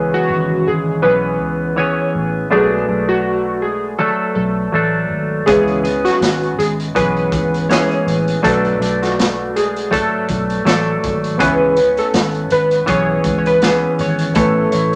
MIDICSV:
0, 0, Header, 1, 6, 480
1, 0, Start_track
1, 0, Tempo, 740741
1, 1630, Time_signature, 4, 2, 24, 8
1, 9690, End_track
2, 0, Start_track
2, 0, Title_t, "Synth keys"
2, 0, Program_c, 0, 88
2, 0, Note_on_c, 0, 68, 87
2, 90, Note_on_c, 0, 66, 78
2, 97, Note_off_c, 0, 68, 0
2, 438, Note_on_c, 0, 68, 80
2, 445, Note_off_c, 0, 66, 0
2, 658, Note_off_c, 0, 68, 0
2, 664, Note_on_c, 0, 71, 91
2, 1149, Note_on_c, 0, 73, 85
2, 1162, Note_off_c, 0, 71, 0
2, 1496, Note_off_c, 0, 73, 0
2, 1631, Note_on_c, 0, 68, 91
2, 1999, Note_on_c, 0, 66, 74
2, 2014, Note_off_c, 0, 68, 0
2, 2346, Note_on_c, 0, 68, 73
2, 2359, Note_off_c, 0, 66, 0
2, 2582, Note_on_c, 0, 69, 85
2, 2595, Note_off_c, 0, 68, 0
2, 2809, Note_off_c, 0, 69, 0
2, 2820, Note_on_c, 0, 69, 70
2, 3279, Note_off_c, 0, 69, 0
2, 3538, Note_on_c, 0, 68, 89
2, 3918, Note_on_c, 0, 66, 77
2, 3927, Note_off_c, 0, 68, 0
2, 4243, Note_off_c, 0, 66, 0
2, 4268, Note_on_c, 0, 68, 81
2, 4358, Note_off_c, 0, 68, 0
2, 4509, Note_on_c, 0, 71, 94
2, 4963, Note_off_c, 0, 71, 0
2, 4985, Note_on_c, 0, 73, 81
2, 5333, Note_off_c, 0, 73, 0
2, 5470, Note_on_c, 0, 69, 86
2, 5848, Note_on_c, 0, 66, 73
2, 5852, Note_off_c, 0, 69, 0
2, 6196, Note_on_c, 0, 68, 77
2, 6202, Note_off_c, 0, 66, 0
2, 6416, Note_off_c, 0, 68, 0
2, 6430, Note_on_c, 0, 69, 99
2, 6902, Note_off_c, 0, 69, 0
2, 6910, Note_on_c, 0, 69, 82
2, 7255, Note_off_c, 0, 69, 0
2, 7387, Note_on_c, 0, 71, 92
2, 7766, Note_on_c, 0, 69, 78
2, 7770, Note_off_c, 0, 71, 0
2, 8113, Note_on_c, 0, 71, 86
2, 8121, Note_off_c, 0, 69, 0
2, 8334, Note_off_c, 0, 71, 0
2, 8356, Note_on_c, 0, 73, 91
2, 8664, Note_off_c, 0, 73, 0
2, 8671, Note_on_c, 0, 73, 61
2, 8720, Note_off_c, 0, 73, 0
2, 8728, Note_on_c, 0, 71, 84
2, 9075, Note_on_c, 0, 73, 76
2, 9082, Note_off_c, 0, 71, 0
2, 9303, Note_on_c, 0, 69, 79
2, 9318, Note_off_c, 0, 73, 0
2, 9688, Note_off_c, 0, 69, 0
2, 9690, End_track
3, 0, Start_track
3, 0, Title_t, "Upright piano"
3, 0, Program_c, 1, 0
3, 0, Control_c, 1, 64, 127
3, 0, Note_on_c, 1, 56, 60
3, 0, Note_on_c, 1, 61, 50
3, 0, Note_on_c, 1, 64, 48
3, 0, Note_on_c, 1, 71, 69
3, 1600, Note_off_c, 1, 56, 0
3, 1605, Note_off_c, 1, 61, 0
3, 1611, Note_off_c, 1, 64, 0
3, 1616, Note_off_c, 1, 71, 0
3, 1619, Note_on_c, 1, 57, 61
3, 1630, Note_on_c, 1, 62, 50
3, 1640, Control_c, 1, 64, 0
3, 1643, Note_on_c, 1, 66, 50
3, 1652, Note_on_c, 1, 71, 62
3, 1759, Control_c, 1, 64, 127
3, 3518, Note_off_c, 1, 57, 0
3, 3524, Note_off_c, 1, 62, 0
3, 3530, Note_off_c, 1, 66, 0
3, 3535, Note_off_c, 1, 71, 0
3, 3538, Note_on_c, 1, 56, 60
3, 3546, Note_on_c, 1, 61, 51
3, 3558, Note_on_c, 1, 64, 51
3, 3559, Control_c, 1, 64, 0
3, 3569, Note_on_c, 1, 71, 64
3, 3656, Control_c, 1, 64, 127
3, 4958, Note_off_c, 1, 56, 0
3, 4961, Note_off_c, 1, 61, 0
3, 4968, Note_off_c, 1, 64, 0
3, 4973, Note_off_c, 1, 71, 0
3, 4981, Note_on_c, 1, 56, 43
3, 4988, Note_on_c, 1, 61, 43
3, 4994, Note_on_c, 1, 64, 41
3, 4999, Note_on_c, 1, 70, 37
3, 5040, Note_off_c, 1, 70, 0
3, 5042, Note_on_c, 1, 71, 46
3, 5457, Note_on_c, 1, 57, 55
3, 5465, Note_off_c, 1, 56, 0
3, 5468, Note_on_c, 1, 62, 52
3, 5469, Note_off_c, 1, 61, 0
3, 5472, Note_off_c, 1, 64, 0
3, 5475, Note_on_c, 1, 66, 54
3, 5477, Note_off_c, 1, 71, 0
3, 5479, Control_c, 1, 64, 0
3, 5487, Note_on_c, 1, 71, 62
3, 5611, Control_c, 1, 64, 127
3, 7356, Note_off_c, 1, 57, 0
3, 7362, Note_off_c, 1, 62, 0
3, 7365, Note_off_c, 1, 66, 0
3, 7371, Note_off_c, 1, 71, 0
3, 7372, Note_on_c, 1, 59, 60
3, 7384, Note_on_c, 1, 61, 54
3, 7394, Note_on_c, 1, 64, 51
3, 7396, Control_c, 1, 64, 0
3, 7404, Note_on_c, 1, 71, 59
3, 7516, Control_c, 1, 64, 127
3, 9273, Note_off_c, 1, 59, 0
3, 9279, Note_off_c, 1, 61, 0
3, 9284, Note_off_c, 1, 64, 0
3, 9289, Note_off_c, 1, 71, 0
3, 9291, Note_on_c, 1, 57, 58
3, 9303, Note_on_c, 1, 61, 59
3, 9313, Note_on_c, 1, 80, 54
3, 9317, Control_c, 1, 64, 0
3, 9326, Note_on_c, 1, 71, 64
3, 9444, Control_c, 1, 64, 127
3, 9690, Note_off_c, 1, 57, 0
3, 9690, Note_off_c, 1, 61, 0
3, 9690, Note_off_c, 1, 71, 0
3, 9690, Note_off_c, 1, 80, 0
3, 9690, End_track
4, 0, Start_track
4, 0, Title_t, "Clean electric guitar"
4, 0, Program_c, 2, 27
4, 0, Note_on_c, 2, 49, 66
4, 0, Note_on_c, 2, 52, 77
4, 0, Note_on_c, 2, 59, 74
4, 0, Note_on_c, 2, 61, 78
4, 0, Note_on_c, 2, 68, 81
4, 655, Note_off_c, 2, 52, 0
4, 663, Note_on_c, 2, 52, 54
4, 665, Note_off_c, 2, 59, 0
4, 667, Note_on_c, 2, 59, 64
4, 668, Note_off_c, 2, 49, 0
4, 669, Note_off_c, 2, 61, 0
4, 672, Note_off_c, 2, 68, 0
4, 677, Note_on_c, 2, 61, 63
4, 679, Note_on_c, 2, 68, 61
4, 1135, Note_off_c, 2, 52, 0
4, 1143, Note_on_c, 2, 52, 57
4, 1148, Note_off_c, 2, 61, 0
4, 1149, Note_off_c, 2, 59, 0
4, 1152, Note_on_c, 2, 59, 61
4, 1155, Note_off_c, 2, 68, 0
4, 1156, Note_on_c, 2, 61, 57
4, 1162, Note_on_c, 2, 68, 65
4, 1624, Note_off_c, 2, 52, 0
4, 1624, Note_on_c, 2, 47, 75
4, 1626, Note_on_c, 2, 54, 68
4, 1627, Note_off_c, 2, 59, 0
4, 1628, Note_off_c, 2, 61, 0
4, 1629, Note_on_c, 2, 57, 72
4, 1631, Note_on_c, 2, 62, 84
4, 1636, Note_off_c, 2, 68, 0
4, 1863, Note_off_c, 2, 62, 0
4, 1867, Note_off_c, 2, 47, 0
4, 1868, Note_off_c, 2, 54, 0
4, 1870, Note_off_c, 2, 57, 0
4, 1870, Note_on_c, 2, 62, 37
4, 1881, Note_on_c, 2, 57, 36
4, 2581, Note_off_c, 2, 57, 0
4, 2582, Note_off_c, 2, 62, 0
4, 2585, Note_on_c, 2, 54, 54
4, 2589, Note_on_c, 2, 57, 57
4, 2590, Note_on_c, 2, 62, 52
4, 2594, Note_on_c, 2, 69, 53
4, 3053, Note_off_c, 2, 54, 0
4, 3061, Note_on_c, 2, 54, 52
4, 3062, Note_off_c, 2, 57, 0
4, 3070, Note_off_c, 2, 62, 0
4, 3070, Note_on_c, 2, 57, 54
4, 3072, Note_off_c, 2, 69, 0
4, 3077, Note_on_c, 2, 62, 65
4, 3079, Note_on_c, 2, 69, 59
4, 3542, Note_off_c, 2, 54, 0
4, 3545, Note_on_c, 2, 49, 80
4, 3545, Note_on_c, 2, 52, 69
4, 3547, Note_off_c, 2, 57, 0
4, 3549, Note_off_c, 2, 69, 0
4, 3549, Note_on_c, 2, 59, 76
4, 3551, Note_off_c, 2, 62, 0
4, 3552, Note_on_c, 2, 68, 81
4, 3554, Note_on_c, 2, 61, 78
4, 3775, Note_off_c, 2, 68, 0
4, 3780, Note_off_c, 2, 61, 0
4, 3783, Note_on_c, 2, 68, 43
4, 3787, Note_off_c, 2, 52, 0
4, 3788, Note_off_c, 2, 49, 0
4, 3788, Note_on_c, 2, 61, 42
4, 3789, Note_off_c, 2, 59, 0
4, 3799, Note_on_c, 2, 59, 37
4, 4503, Note_off_c, 2, 59, 0
4, 4503, Note_off_c, 2, 61, 0
4, 4504, Note_on_c, 2, 52, 52
4, 4506, Note_off_c, 2, 68, 0
4, 4506, Note_on_c, 2, 59, 58
4, 4510, Note_on_c, 2, 61, 59
4, 4516, Note_on_c, 2, 68, 56
4, 4983, Note_off_c, 2, 52, 0
4, 4990, Note_off_c, 2, 59, 0
4, 4990, Note_off_c, 2, 61, 0
4, 4991, Note_on_c, 2, 52, 51
4, 4992, Note_off_c, 2, 68, 0
4, 4993, Note_on_c, 2, 59, 50
4, 5000, Note_on_c, 2, 61, 53
4, 5004, Note_on_c, 2, 68, 67
4, 5461, Note_off_c, 2, 52, 0
4, 5461, Note_on_c, 2, 47, 75
4, 5464, Note_off_c, 2, 59, 0
4, 5464, Note_on_c, 2, 54, 81
4, 5465, Note_off_c, 2, 61, 0
4, 5467, Note_on_c, 2, 57, 78
4, 5467, Note_on_c, 2, 62, 81
4, 5471, Note_off_c, 2, 68, 0
4, 5474, Note_on_c, 2, 69, 74
4, 5704, Note_off_c, 2, 62, 0
4, 5705, Note_off_c, 2, 47, 0
4, 5706, Note_off_c, 2, 54, 0
4, 5708, Note_off_c, 2, 57, 0
4, 5711, Note_off_c, 2, 69, 0
4, 5711, Note_on_c, 2, 62, 46
4, 5720, Note_on_c, 2, 57, 38
4, 6417, Note_off_c, 2, 57, 0
4, 6421, Note_on_c, 2, 54, 59
4, 6424, Note_off_c, 2, 62, 0
4, 6424, Note_on_c, 2, 57, 61
4, 6432, Note_on_c, 2, 62, 57
4, 6435, Note_on_c, 2, 69, 56
4, 6895, Note_off_c, 2, 54, 0
4, 6902, Note_off_c, 2, 57, 0
4, 6902, Note_off_c, 2, 62, 0
4, 6902, Note_on_c, 2, 54, 58
4, 6909, Note_off_c, 2, 69, 0
4, 6910, Note_on_c, 2, 57, 55
4, 6910, Note_on_c, 2, 62, 59
4, 6917, Note_on_c, 2, 69, 60
4, 7381, Note_off_c, 2, 57, 0
4, 7382, Note_on_c, 2, 49, 78
4, 7383, Note_off_c, 2, 54, 0
4, 7383, Note_on_c, 2, 59, 77
4, 7385, Note_on_c, 2, 52, 76
4, 7388, Note_off_c, 2, 62, 0
4, 7388, Note_off_c, 2, 69, 0
4, 7390, Note_on_c, 2, 61, 76
4, 7390, Note_on_c, 2, 68, 77
4, 7618, Note_off_c, 2, 61, 0
4, 7623, Note_off_c, 2, 59, 0
4, 7625, Note_off_c, 2, 49, 0
4, 7626, Note_on_c, 2, 61, 41
4, 7627, Note_off_c, 2, 52, 0
4, 7629, Note_off_c, 2, 68, 0
4, 7631, Note_on_c, 2, 59, 34
4, 8335, Note_on_c, 2, 52, 59
4, 8338, Note_off_c, 2, 59, 0
4, 8341, Note_on_c, 2, 59, 58
4, 8343, Note_off_c, 2, 61, 0
4, 8346, Note_on_c, 2, 61, 58
4, 8350, Note_on_c, 2, 68, 61
4, 8824, Note_off_c, 2, 52, 0
4, 8826, Note_on_c, 2, 52, 53
4, 8829, Note_off_c, 2, 59, 0
4, 8832, Note_off_c, 2, 61, 0
4, 8832, Note_on_c, 2, 59, 61
4, 8834, Note_on_c, 2, 61, 60
4, 8836, Note_off_c, 2, 68, 0
4, 8839, Note_on_c, 2, 68, 56
4, 9302, Note_off_c, 2, 52, 0
4, 9303, Note_off_c, 2, 59, 0
4, 9303, Note_on_c, 2, 57, 71
4, 9304, Note_on_c, 2, 59, 71
4, 9306, Note_on_c, 2, 64, 70
4, 9311, Note_off_c, 2, 68, 0
4, 9313, Note_on_c, 2, 73, 81
4, 9324, Note_off_c, 2, 61, 0
4, 9533, Note_off_c, 2, 73, 0
4, 9541, Note_on_c, 2, 73, 44
4, 9545, Note_off_c, 2, 57, 0
4, 9545, Note_off_c, 2, 59, 0
4, 9546, Note_off_c, 2, 64, 0
4, 9555, Note_on_c, 2, 64, 37
4, 9690, Note_off_c, 2, 64, 0
4, 9690, Note_off_c, 2, 73, 0
4, 9690, End_track
5, 0, Start_track
5, 0, Title_t, "Fingered electric bass"
5, 0, Program_c, 3, 33
5, 0, Note_on_c, 3, 37, 83
5, 93, Note_off_c, 3, 37, 0
5, 190, Note_on_c, 3, 32, 84
5, 382, Note_off_c, 3, 32, 0
5, 434, Note_on_c, 3, 32, 78
5, 624, Note_off_c, 3, 32, 0
5, 672, Note_on_c, 3, 35, 84
5, 914, Note_off_c, 3, 35, 0
5, 914, Note_on_c, 3, 37, 92
5, 1297, Note_off_c, 3, 37, 0
5, 1392, Note_on_c, 3, 33, 76
5, 1584, Note_off_c, 3, 33, 0
5, 1630, Note_on_c, 3, 35, 92
5, 1822, Note_off_c, 3, 35, 0
5, 1871, Note_on_c, 3, 35, 76
5, 2696, Note_off_c, 3, 35, 0
5, 2826, Note_on_c, 3, 35, 88
5, 3019, Note_off_c, 3, 35, 0
5, 3067, Note_on_c, 3, 33, 79
5, 3260, Note_off_c, 3, 33, 0
5, 3303, Note_on_c, 3, 32, 72
5, 3498, Note_off_c, 3, 32, 0
5, 3550, Note_on_c, 3, 37, 82
5, 3934, Note_off_c, 3, 37, 0
5, 4024, Note_on_c, 3, 32, 84
5, 4218, Note_off_c, 3, 32, 0
5, 4264, Note_on_c, 3, 32, 83
5, 4458, Note_off_c, 3, 32, 0
5, 4509, Note_on_c, 3, 35, 78
5, 4743, Note_off_c, 3, 35, 0
5, 4743, Note_on_c, 3, 37, 93
5, 5129, Note_off_c, 3, 37, 0
5, 5226, Note_on_c, 3, 33, 72
5, 5419, Note_off_c, 3, 33, 0
5, 5474, Note_on_c, 3, 35, 82
5, 5664, Note_off_c, 3, 35, 0
5, 5703, Note_on_c, 3, 35, 76
5, 6532, Note_off_c, 3, 35, 0
5, 6664, Note_on_c, 3, 35, 93
5, 6858, Note_off_c, 3, 35, 0
5, 6902, Note_on_c, 3, 33, 81
5, 7096, Note_off_c, 3, 33, 0
5, 7156, Note_on_c, 3, 32, 77
5, 7389, Note_off_c, 3, 32, 0
5, 7389, Note_on_c, 3, 37, 90
5, 7772, Note_off_c, 3, 37, 0
5, 7865, Note_on_c, 3, 32, 94
5, 8058, Note_off_c, 3, 32, 0
5, 8106, Note_on_c, 3, 32, 88
5, 8299, Note_off_c, 3, 32, 0
5, 8347, Note_on_c, 3, 35, 88
5, 8539, Note_off_c, 3, 35, 0
5, 8578, Note_on_c, 3, 37, 86
5, 8966, Note_off_c, 3, 37, 0
5, 9066, Note_on_c, 3, 32, 68
5, 9258, Note_off_c, 3, 32, 0
5, 9304, Note_on_c, 3, 33, 81
5, 9497, Note_off_c, 3, 33, 0
5, 9547, Note_on_c, 3, 33, 75
5, 9690, Note_off_c, 3, 33, 0
5, 9690, End_track
6, 0, Start_track
6, 0, Title_t, "Drums"
6, 3547, Note_on_c, 9, 42, 86
6, 3549, Note_on_c, 9, 36, 106
6, 3612, Note_off_c, 9, 42, 0
6, 3614, Note_off_c, 9, 36, 0
6, 3679, Note_on_c, 9, 42, 31
6, 3743, Note_off_c, 9, 42, 0
6, 3789, Note_on_c, 9, 42, 70
6, 3854, Note_off_c, 9, 42, 0
6, 3923, Note_on_c, 9, 42, 46
6, 3925, Note_on_c, 9, 38, 32
6, 3988, Note_off_c, 9, 42, 0
6, 3990, Note_off_c, 9, 38, 0
6, 4032, Note_on_c, 9, 42, 86
6, 4035, Note_on_c, 9, 38, 98
6, 4096, Note_off_c, 9, 42, 0
6, 4099, Note_off_c, 9, 38, 0
6, 4168, Note_on_c, 9, 42, 33
6, 4233, Note_off_c, 9, 42, 0
6, 4275, Note_on_c, 9, 42, 75
6, 4340, Note_off_c, 9, 42, 0
6, 4404, Note_on_c, 9, 42, 44
6, 4469, Note_off_c, 9, 42, 0
6, 4511, Note_on_c, 9, 36, 85
6, 4513, Note_on_c, 9, 42, 74
6, 4576, Note_off_c, 9, 36, 0
6, 4578, Note_off_c, 9, 42, 0
6, 4644, Note_on_c, 9, 42, 30
6, 4709, Note_off_c, 9, 42, 0
6, 4745, Note_on_c, 9, 36, 84
6, 4747, Note_on_c, 9, 42, 63
6, 4810, Note_off_c, 9, 36, 0
6, 4812, Note_off_c, 9, 42, 0
6, 4887, Note_on_c, 9, 42, 44
6, 4952, Note_off_c, 9, 42, 0
6, 4993, Note_on_c, 9, 42, 76
6, 4999, Note_on_c, 9, 38, 101
6, 5058, Note_off_c, 9, 42, 0
6, 5064, Note_off_c, 9, 38, 0
6, 5128, Note_on_c, 9, 42, 30
6, 5192, Note_off_c, 9, 42, 0
6, 5235, Note_on_c, 9, 42, 60
6, 5300, Note_off_c, 9, 42, 0
6, 5364, Note_on_c, 9, 42, 48
6, 5429, Note_off_c, 9, 42, 0
6, 5472, Note_on_c, 9, 36, 104
6, 5474, Note_on_c, 9, 42, 92
6, 5537, Note_off_c, 9, 36, 0
6, 5539, Note_off_c, 9, 42, 0
6, 5603, Note_on_c, 9, 42, 34
6, 5668, Note_off_c, 9, 42, 0
6, 5715, Note_on_c, 9, 42, 81
6, 5780, Note_off_c, 9, 42, 0
6, 5851, Note_on_c, 9, 42, 45
6, 5853, Note_on_c, 9, 38, 29
6, 5916, Note_off_c, 9, 42, 0
6, 5917, Note_off_c, 9, 38, 0
6, 5958, Note_on_c, 9, 42, 89
6, 5960, Note_on_c, 9, 38, 118
6, 6022, Note_off_c, 9, 42, 0
6, 6025, Note_off_c, 9, 38, 0
6, 6198, Note_on_c, 9, 42, 73
6, 6263, Note_off_c, 9, 42, 0
6, 6326, Note_on_c, 9, 42, 46
6, 6391, Note_off_c, 9, 42, 0
6, 6432, Note_on_c, 9, 36, 77
6, 6437, Note_on_c, 9, 42, 78
6, 6497, Note_off_c, 9, 36, 0
6, 6501, Note_off_c, 9, 42, 0
6, 6666, Note_on_c, 9, 36, 76
6, 6666, Note_on_c, 9, 42, 65
6, 6730, Note_off_c, 9, 36, 0
6, 6731, Note_off_c, 9, 42, 0
6, 6803, Note_on_c, 9, 42, 47
6, 6868, Note_off_c, 9, 42, 0
6, 6911, Note_on_c, 9, 42, 79
6, 6917, Note_on_c, 9, 38, 105
6, 6976, Note_off_c, 9, 42, 0
6, 6982, Note_off_c, 9, 38, 0
6, 7152, Note_on_c, 9, 42, 60
6, 7153, Note_on_c, 9, 36, 84
6, 7216, Note_off_c, 9, 42, 0
6, 7218, Note_off_c, 9, 36, 0
6, 7283, Note_on_c, 9, 42, 47
6, 7348, Note_off_c, 9, 42, 0
6, 7389, Note_on_c, 9, 42, 87
6, 7390, Note_on_c, 9, 36, 102
6, 7453, Note_off_c, 9, 42, 0
6, 7454, Note_off_c, 9, 36, 0
6, 7623, Note_on_c, 9, 42, 69
6, 7688, Note_off_c, 9, 42, 0
6, 7758, Note_on_c, 9, 42, 46
6, 7823, Note_off_c, 9, 42, 0
6, 7866, Note_on_c, 9, 42, 87
6, 7868, Note_on_c, 9, 38, 105
6, 7930, Note_off_c, 9, 42, 0
6, 7933, Note_off_c, 9, 38, 0
6, 7999, Note_on_c, 9, 42, 34
6, 8064, Note_off_c, 9, 42, 0
6, 8102, Note_on_c, 9, 42, 76
6, 8167, Note_off_c, 9, 42, 0
6, 8236, Note_on_c, 9, 42, 47
6, 8301, Note_off_c, 9, 42, 0
6, 8343, Note_on_c, 9, 42, 78
6, 8346, Note_on_c, 9, 36, 83
6, 8408, Note_off_c, 9, 42, 0
6, 8411, Note_off_c, 9, 36, 0
6, 8580, Note_on_c, 9, 36, 78
6, 8580, Note_on_c, 9, 42, 63
6, 8645, Note_off_c, 9, 36, 0
6, 8645, Note_off_c, 9, 42, 0
6, 8721, Note_on_c, 9, 42, 44
6, 8786, Note_off_c, 9, 42, 0
6, 8824, Note_on_c, 9, 42, 70
6, 8830, Note_on_c, 9, 38, 108
6, 8889, Note_off_c, 9, 42, 0
6, 8895, Note_off_c, 9, 38, 0
6, 9065, Note_on_c, 9, 42, 52
6, 9130, Note_off_c, 9, 42, 0
6, 9193, Note_on_c, 9, 42, 46
6, 9257, Note_off_c, 9, 42, 0
6, 9299, Note_on_c, 9, 42, 88
6, 9303, Note_on_c, 9, 36, 110
6, 9363, Note_off_c, 9, 42, 0
6, 9368, Note_off_c, 9, 36, 0
6, 9539, Note_on_c, 9, 42, 69
6, 9603, Note_off_c, 9, 42, 0
6, 9690, End_track
0, 0, End_of_file